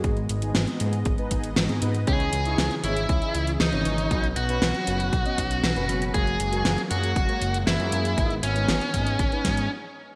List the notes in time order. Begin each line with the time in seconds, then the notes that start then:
Already playing: G#3
0.04 G#1 G#2 B3 D#4 G#4 D#5, kick, closed hi-hat
0.17 closed hi-hat
0.29 G#1, closed hi-hat
0.42 G#2 B3 D#4 G#4, closed hi-hat
0.55 G#1, snare, closed hi-hat
0.67 closed hi-hat
0.80 G#2 B3 D#4 G#4, closed hi-hat
0.93 closed hi-hat
1.05 G#1, kick, closed hi-hat
1.18 G#2 B3 D#4 B4, closed hi-hat
1.31 G#1 G#2 B3 D#4 G#4, kick, closed hi-hat
1.44 closed hi-hat
1.56 G#1, snare, closed hi-hat
1.69 G#2 B3 D#4 G#4, closed hi-hat
1.82 G#2 B3 D#4 B4, closed hi-hat
1.95 closed hi-hat
2.07 C#2 C#3 E3 C#4 D#4 E4 G#4 C#5, kick, closed hi-hat
2.20 closed hi-hat
2.33 C#2, closed hi-hat
2.45 C#3 D#4 E4 C#5, closed hi-hat
2.58 C#2, snare, closed hi-hat
2.71 closed hi-hat
2.84 G#1 C#3 D#4 E4 C#5, closed hi-hat
2.97 closed hi-hat
3.09 C#2, kick, closed hi-hat
3.22 C#3 D#4 E4 E5, closed hi-hat
3.35 C#2, closed hi-hat
3.47 closed hi-hat
3.60 C#2 D#4, snare, closed hi-hat
3.73 G#1 C#3 E3 D#4 C#5, closed hi-hat
3.85 G#1, closed hi-hat
3.98 closed hi-hat
4.11 B1 B2 F#3 B3 C#4 F#4 B4, kick, closed hi-hat
4.24 closed hi-hat
4.36 B1 F#4, closed hi-hat
4.49 B2 C#4 F#4 B4, closed hi-hat
4.62 B1, snare, closed hi-hat
4.75 closed hi-hat
4.87 F#1 B2 C#4 F#4 B4, closed hi-hat
5.00 closed hi-hat
5.13 B1, kick, closed hi-hat
5.25 B2 C#4 F#4 D#5, closed hi-hat
5.38 B1, kick, closed hi-hat
5.51 closed hi-hat
5.64 B1, snare, closed hi-hat
5.76 F#1 B2 C#4 F#4 B4, closed hi-hat
5.89 F#1, closed hi-hat
6.02 closed hi-hat
6.14 F#1 G#3 A#3 F#4 G#4, kick, closed hi-hat
6.27 closed hi-hat
6.40 F#1, closed hi-hat
6.52 A#3 F#4 G#4, closed hi-hat
6.65 F#1, snare, closed hi-hat
6.78 closed hi-hat
6.91 F#2 A#3 F#4 G#4, closed hi-hat
7.03 closed hi-hat
7.16 F#1, kick, closed hi-hat
7.29 A#3 F#4 C#5, closed hi-hat
7.42 F#1, closed hi-hat
7.54 closed hi-hat
7.67 F#1 E4, snare, closed hi-hat
7.80 F#2 A#3 F#4 G#4, closed hi-hat
7.92 F#2, closed hi-hat
8.05 closed hi-hat
8.18 G#1 G#2 D#3 B3 D#4 G#4, kick, closed hi-hat
8.30 closed hi-hat
8.43 G#1 C#4, closed hi-hat
8.56 G#2 B3 D#4 G#4, closed hi-hat
8.69 G#1, snare, closed hi-hat
8.81 closed hi-hat
8.94 G#2 B3 D#4 G#4, kick, closed hi-hat
9.07 closed hi-hat
9.19 G#1, kick, closed hi-hat
9.32 G#2 B3 D#4 B4, closed hi-hat
9.45 G#2 B3 D#4 G#4, kick, snare, closed hi-hat
9.57 closed hi-hat